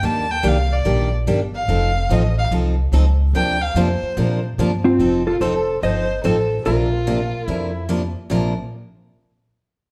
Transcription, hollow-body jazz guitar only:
4.84 5.23 C4 medium
4.84 5.26 F4 medium
5.27 5.40 F4 medium
5.27 5.40 A4 medium
5.41 5.79 A4 medium
5.41 5.79 C5 medium
5.83 6.22 C5 medium
5.83 6.25 D#5 loud
6.25 6.63 A4 medium
6.25 6.67 C5 medium
6.66 7.86 F4 medium
6.66 7.45 A#4 medium
7.45 7.86 A4 medium

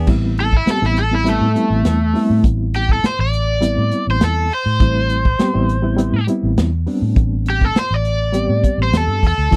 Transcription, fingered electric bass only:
0.07 0.64 A1 medium
0.67 muted fingered electric bass stroke soft
0.82 1.38 A1 medium
1.41 1.55 A2 medium
1.70 1.84 A1 medium
1.84 2.13 E2 medium
2.30 2.43 A2 medium
2.44 3.00 A1 medium
3.03 muted fingered electric bass stroke soft
3.19 3.75 A1 medium
3.78 3.91 A2 medium
4.07 4.21 A1 medium
4.21 4.49 E2 medium
4.66 4.79 A2 medium
4.80 5.37 A1 medium
5.39 muted fingered electric bass stroke soft
5.55 6.11 A1 medium
6.13 6.27 A2 medium
6.43 6.57 A1 medium
6.57 6.85 E2 medium
7.02 7.16 A2 medium
7.16 7.73 A1 loud
7.75 muted fingered electric bass stroke soft
7.91 8.47 A1 medium
8.49 8.63 A2 medium
8.78 8.92 A1 medium
8.92 9.07 E2 medium
9.07 9.21 G2 medium
9.23 9.37 E2 medium
9.38 9.51 D2 medium
9.52 9.56 D2 medium

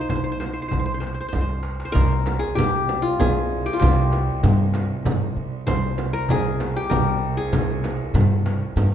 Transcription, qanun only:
0.00 0.91 D#4 medium
0.00 0.76 F4 medium
0.00 0.09 C5 medium
0.10 0.15 C5 medium
0.16 0.23 C5 medium
0.24 0.31 C5 medium
0.32 0.39 C5 medium
0.40 0.45 C5 medium
0.46 0.53 C5 soft
0.53 0.61 C5 medium
0.62 0.68 C5 soft
0.68 0.79 C5 medium
0.79 0.85 C5 medium
0.86 0.94 C5 medium
0.94 1.00 C5 medium
1.00 1.06 C5 medium
1.07 1.14 C5 soft
1.14 1.20 C5 soft
1.21 1.28 C5 medium
1.28 1.35 C5 medium
1.35 1.41 C5 medium
1.41 1.85 C5 medium
1.85 2.91 C5 medium
1.92 3.05 A#4 loud
2.39 2.61 G#4 medium
2.55 3.26 G4 medium
3.02 3.73 F4 medium
3.20 3.72 G#4 medium
3.66 3.79 G4 medium
3.73 5.08 F4 medium
3.79 5.05 G4 medium
5.67 6.72 C5 loud
6.13 6.89 A#4 medium
6.31 6.82 G#4 medium
6.76 7.43 G4 medium
6.90 8.03 A#4 medium
7.37 8.58 G#4 medium

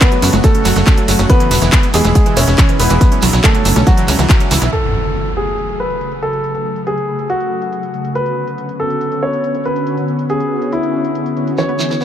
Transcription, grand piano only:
0.01 0.42 B3 medium
0.01 0.42 B4 medium
0.44 1.21 A3 medium
0.44 1.21 A4 loud
1.30 1.85 B3 medium
1.30 1.85 B4 loud
1.94 2.35 G#3 medium
1.94 2.35 G#4 medium
2.37 2.78 C#4 medium
2.37 2.78 C#5 medium
2.80 3.35 B3 medium
2.80 3.35 B4 medium
3.44 3.85 A3 medium
3.44 3.85 A4 medium
3.87 4.64 F#3 medium
3.87 4.64 F#4 loud
4.73 5.28 A4 medium
5.37 5.77 G#4 medium
5.80 6.20 B4 medium
6.22 6.78 A4 medium
6.87 7.27 G#4 medium
7.30 8.07 F#4 medium
8.15 8.71 B4 medium
8.80 9.20 A4 medium
9.23 9.63 C#5 medium
9.65 10.21 B4 medium
10.30 10.70 G#4 medium
10.73 11.50 E4 medium
11.58 12.04 C#5 medium

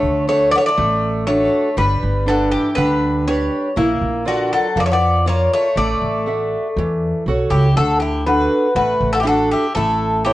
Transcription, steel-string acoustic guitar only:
0.00 0.27 D3 medium
0.27 0.68 D4 soft
0.27 0.68 F#4 soft
0.27 0.68 A4 soft
0.77 1.26 A3 medium
1.27 1.68 D4 soft
1.27 1.68 F#4 soft
1.27 1.68 A4 soft
1.77 2.26 G3 medium
2.26 2.67 D4 soft
2.26 2.67 G4 soft
2.26 2.67 B4 soft
2.76 3.26 D3 medium
3.27 3.68 D4 soft
3.27 3.68 G4 soft
3.27 3.68 B4 soft
3.76 4.25 A#3 medium
4.25 4.66 F4 medium
4.25 4.66 A#4 soft
4.25 4.66 D5 soft
4.77 5.26 F3 medium
5.26 5.67 F4 soft
5.26 5.67 A#4 soft
5.26 5.67 D5 soft
5.77 6.26 A3 medium
6.26 6.67 F#4 soft
6.26 6.67 A4 soft
6.26 6.67 E5 soft
6.78 7.26 E3 medium
7.28 7.67 F#4 soft
7.28 7.68 A4 soft
7.28 7.68 C#5 medium
7.77 8.25 D3 medium
8.26 8.66 D4 soft
8.26 8.67 F#4 soft
8.26 8.67 A4 medium
8.76 9.24 A3 medium
9.24 9.65 D4 soft
9.24 9.65 F#4 soft
9.24 9.65 A4 soft
9.76 10.24 A3 medium
10.26 10.33 E4 soft
10.26 10.33 A4 soft
10.26 10.33 C#5 medium

